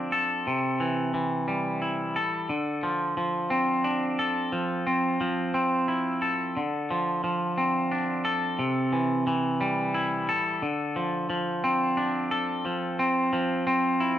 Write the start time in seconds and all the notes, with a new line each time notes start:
Already playing: D3 F3 C4 D4
0.12 A4
0.47 C3
0.80 E3
1.14 E3
1.48 G3
1.82 E4
2.16 A4
2.49 D3
2.83 F3
3.17 F3
3.50 C4
3.84 D4
4.19 A4
4.52 F3
4.87 C4
5.21 F3
5.54 C4
5.88 E4
6.22 A4
6.57 D3
6.91 F3
7.24 F3
7.58 C4
7.91 D4
8.25 A4
8.59 C3
8.93 E3
9.27 E3
9.61 G3
9.94 E4
10.29 A4
10.62 D3
10.96 F3
11.30 F3
11.64 C4
11.97 D4
12.31 A4
12.65 F3
12.99 C4
13.33 F3
13.67 C4
14.00 E4